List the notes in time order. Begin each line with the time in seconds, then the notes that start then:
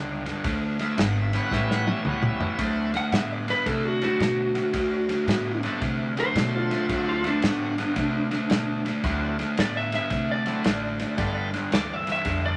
Already playing: C#2 G2 D3
0.26 G2 D3, snare, ride
0.44 D2 D3 A3, kick, snare, ride
0.79 D3 A3 D#5, snare, ride
0.83 E5
0.98 G#1 D3 B3 F#5, snare, ride
1.21 E5
1.33 D3 G3 B3 C#4 E4, snare, ride
1.38 F#5
1.51 A1 A2 E3 D#5, kick, snare
1.57 E5
1.71 F#5, snare
1.87 A2 E3 D#5, high tom
1.91 E5
2.05 C#2 A2 E3 G3 B3 C#4 E4, mid tom
2.09 F#5
2.22 mid tom
2.27 E5
2.40 A2 E3, floor tom
2.59 D2 D3 F#3 A3 C4 D4 E4, kick, snare, ride
2.94 D3 A3 F#5, snare, ride
3.12 A2 D3 B3 E5, snare, ride
3.32 D5
3.48 D3 B3 B4, snare, ride
3.66 C3 D3 A3 A4, kick, snare, ride
3.85 F#4
4.01 D3 F#3 A3 C4 D4 E4 F#4, snare, ride
4.19 B2 D3 A3, snare, ride
4.55 D3 A3, snare, ride
4.73 D2 D3 A3, kick, snare, ride
5.09 D3 A3, snare, ride
5.27 A2 D3 B3, snare, ride
5.63 D3 F#3 A3 B3 C4 D4 E4, snare, ride
5.81 C3 D3 A3, kick, snare, ride
6.17 D3 F#3 A3 D4 C5 E5, snare, ride
6.35 B2 D3 A3, snare, ride
6.56 F4
6.71 D3 A3, snare, ride
6.89 D2 D3 F#3 A3 C4 D4 E4, kick, snare, ride
7.09 F4
7.24 D3 A3 D4, snare, ride
7.42 A2 D3 F#3 A3 B3 C4 D4 F#4, snare, ride
7.78 D3 B3, snare, ride
7.96 C3 D3 A3, kick, snare, ride
8.31 D3 A3, snare, ride
8.50 B2 D3 A3, snare, ride
8.85 D3 A3, snare, ride
9.04 D2 D3 F#3 A3 C4 D4 E4, kick, snare, ride
9.39 D3 A3, snare, ride
9.57 A2 D3 B3 D5, snare, ride
9.77 E5
9.92 D3 B3 E5, snare, ride
10.10 C3 D3 A3, kick, snare, ride
10.32 D5
10.46 D3 F#3 A3 C4 D4 E4, snare, ride
10.64 A1 D3 A3, snare, ride
10.99 D3 A3, snare, ride
11.18 G1 G2 D3 G3 A3 B3 D4 F4, kick, snare, ride
11.54 G2 D3, snare, ride
11.72 D2 G2 E3 D5, snare, ride
11.94 E5
12.07 G2 E3, snare, ride
12.12 E5
12.25 F2 G2 D3, kick, snare, ride
12.46 D5